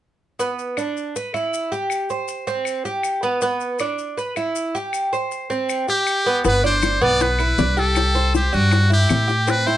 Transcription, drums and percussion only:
0.40 maracas medium
0.59 maracas soft
0.77 claves medium
0.77 maracas medium
0.97 maracas soft
1.16 maracas medium
1.34 claves medium
1.34 maracas soft
1.54 maracas medium
1.73 maracas soft
1.90 claves medium
1.90 maracas medium
2.10 maracas soft
2.28 maracas medium
2.48 maracas soft
2.65 claves medium
2.65 maracas medium
2.86 maracas soft
3.03 claves medium
3.03 maracas medium
3.23 maracas soft
3.41 maracas medium
3.60 maracas soft
3.79 claves medium
3.79 maracas medium
3.98 maracas soft
4.18 maracas medium
4.36 claves medium
4.36 maracas soft
4.56 maracas medium
4.75 maracas soft
4.93 claves medium
4.93 maracas medium
5.13 maracas soft
5.31 maracas medium
5.51 maracas soft
5.69 claves medium
5.69 maracas medium
5.88 maracas soft
6.07 claves medium
6.07 maracas medium
6.27 maracas soft
6.45 high bongo medium
6.45 maracas medium
6.64 high bongo soft
6.64 maracas soft
6.82 high bongo medium
6.82 claves medium
6.82 maracas medium
7.02 maracas soft
7.20 high bongo medium
7.20 maracas medium
7.39 high bongo soft
7.39 claves medium
7.39 maracas soft
7.58 high bongo soft
7.58 low bongo medium
7.58 maracas medium
7.77 high bongo soft
7.77 maracas soft
7.95 high bongo medium
7.95 claves medium
7.95 maracas medium
8.15 high bongo soft
8.15 maracas soft
8.35 high bongo medium
8.35 maracas medium
8.53 maracas soft
8.71 high bongo medium
8.71 claves medium
8.71 maracas medium
8.91 high bongo soft
8.91 maracas soft
9.09 high bongo soft
9.09 low bongo medium
9.09 claves medium
9.09 maracas medium
9.29 high bongo soft
9.29 maracas soft
9.47 high bongo medium
9.47 maracas medium
9.67 high bongo soft
9.67 maracas soft

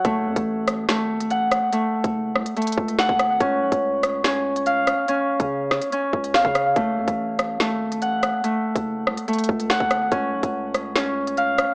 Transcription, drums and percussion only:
0.05 kick loud
0.05 closed hi-hat medium
0.36 kick medium
0.36 closed hi-hat medium
0.68 cross-stick loud
0.68 closed hi-hat medium
0.89 snare loud
0.89 closed hi-hat medium
1.20 closed hi-hat medium
1.30 closed hi-hat medium
1.51 cross-stick loud
1.51 closed hi-hat medium
1.73 closed hi-hat medium
2.04 kick loud
2.04 closed hi-hat medium
2.36 cross-stick loud
2.46 closed hi-hat medium
2.57 closed hi-hat soft
2.62 closed hi-hat medium
2.67 closed hi-hat medium
2.72 closed hi-hat medium
2.78 kick loud
2.88 closed hi-hat medium
2.99 snare loud
3.09 kick loud
3.19 cross-stick loud
3.19 closed hi-hat medium
3.40 kick loud
3.40 closed hi-hat medium
3.72 kick loud
3.72 closed hi-hat medium
4.03 cross-stick loud
4.03 closed hi-hat medium
4.24 snare loud
4.24 closed hi-hat medium
4.56 closed hi-hat medium
4.66 closed hi-hat medium
4.87 cross-stick loud
4.87 closed hi-hat medium
5.08 closed hi-hat medium
5.40 kick medium
5.40 closed hi-hat medium
5.71 cross-stick loud
5.71 snare medium
5.82 closed hi-hat medium
5.92 closed hi-hat medium
6.13 kick loud
6.24 closed hi-hat medium
6.34 snare loud
6.45 kick loud
6.55 cross-stick loud
6.55 closed hi-hat medium
6.76 kick loud
6.76 closed hi-hat medium
7.08 kick loud
7.08 closed hi-hat medium
7.39 cross-stick loud
7.39 closed hi-hat medium
7.60 snare loud
7.60 closed hi-hat medium
7.92 closed hi-hat medium
8.02 closed hi-hat medium
8.23 cross-stick loud
8.23 closed hi-hat medium
8.44 closed hi-hat medium
8.75 kick medium
8.75 closed hi-hat medium
9.07 cross-stick loud
9.17 closed hi-hat medium
9.28 closed hi-hat medium
9.33 closed hi-hat medium
9.38 closed hi-hat medium
9.44 closed hi-hat medium
9.49 kick loud
9.60 closed hi-hat medium
9.70 snare loud
9.80 kick loud
9.91 cross-stick loud
9.91 closed hi-hat medium
10.12 kick loud
10.12 closed hi-hat medium
10.43 kick medium
10.43 closed hi-hat medium
10.75 cross-stick medium
10.75 closed hi-hat medium
10.96 snare loud
10.96 closed hi-hat medium
11.27 closed hi-hat medium
11.37 closed hi-hat medium
11.58 cross-stick loud
11.58 closed hi-hat medium

